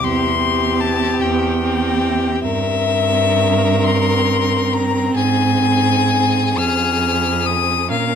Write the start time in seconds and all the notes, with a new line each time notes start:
0.01 E2 C4 G4 C6
0.41 C4 G4
0.80 A5
1.20 E2 G5
1.62 C4 G4
2.42 G2 C4 A#4 E5
3.84 C6
4.73 A#5
5.16 G#2 G#4 G#5
6.57 F2 F6
7.46 D#6
7.90 A#2 C#4 A#4 F5